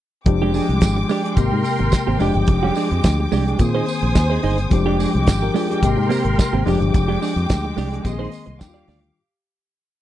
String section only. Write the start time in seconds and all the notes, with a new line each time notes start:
0.26 G#3 G5 D6
1.36 A#4 C6
2.19 G#3 D6
3.60 C5 G#5 D#6
4.73 G#3 G5 D6
5.83 A#4 C6
6.67 G#3 G5 D6
8.06 D#5 C6
8.60 G4 F5 D6